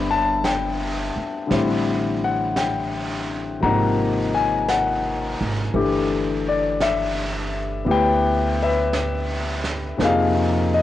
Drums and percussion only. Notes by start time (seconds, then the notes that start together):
0.44 brush sweep, snare, hi-hat pedal
1.51 brush sweep, snare
2.56 brush sweep, snare, hi-hat pedal
3.61 brush sweep
4.69 brush sweep, snare, hi-hat pedal
5.74 brush sweep
6.80 brush sweep, snare, hi-hat pedal
7.87 brush sweep
8.93 brush sweep, snare, hi-hat pedal
9.64 snare
10.00 brush sweep, snare